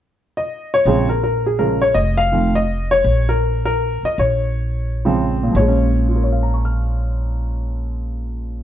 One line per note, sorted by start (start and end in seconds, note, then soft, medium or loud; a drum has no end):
0.37 0.74 D#5 medium
0.74 1.07 C#5 medium
0.85 1.91 A#1 medium
0.85 1.07 C#3 medium
0.85 1.07 F3 medium
0.85 1.07 G#3 medium
0.85 1.07 C4 medium
1.09 1.22 A#4 medium
1.24 1.44 A#4 medium
1.46 1.60 G#4 medium
1.59 1.79 C#3 soft
1.59 1.79 F3 soft
1.59 1.80 G#3 soft
1.59 1.80 C#4 medium
1.59 1.80 A#4 medium
1.82 1.94 C#5 medium
1.94 3.00 F1 medium
1.94 2.18 D#5 medium
2.17 2.55 F5 loud
2.32 2.52 D#3 soft
2.32 2.53 F3 soft
2.32 2.53 A3 soft
2.32 2.53 C4 medium
2.55 2.92 D#5 medium
2.91 3.29 C#5 medium
3.04 3.99 A#1 medium
3.29 3.63 A#4 medium
3.65 4.01 A#4 medium
4.03 4.18 D#5 medium
4.03 muted upright bass stroke soft
4.18 5.51 A#1 medium
4.18 5.32 C#5 medium
5.05 5.55 C#3 medium
5.05 5.49 F3 medium
5.05 5.55 G#3 medium
5.05 5.55 C4 medium
5.43 8.63 A#2 medium
5.51 8.63 A#1 medium
5.51 8.63 F3 medium
5.56 8.63 G#3 medium
5.56 6.22 C#5 medium
5.68 8.63 C#4 medium
6.08 8.63 F4 soft
6.16 8.63 A#4 soft
6.24 8.63 C#5 soft
6.32 8.63 F5 soft
6.43 8.63 A#5 soft
6.54 8.63 C#6 soft
6.65 8.63 F6 soft